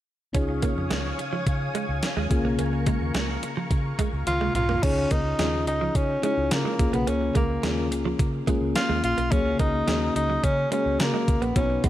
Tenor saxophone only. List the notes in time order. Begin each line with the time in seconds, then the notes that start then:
4.27 F4
4.55 F4
4.83 C#4
5.12 D#4
5.68 D#4
5.96 C#4
6.24 C#4
6.52 A#3
6.94 B3
7.08 C#4
7.36 A#3
8.76 F4
9.04 F4
9.32 C#4
9.60 D#4
10.16 D#4
10.44 C#4
10.72 C#4
11.00 A#3
11.42 B3
11.57 C#4
11.85 B3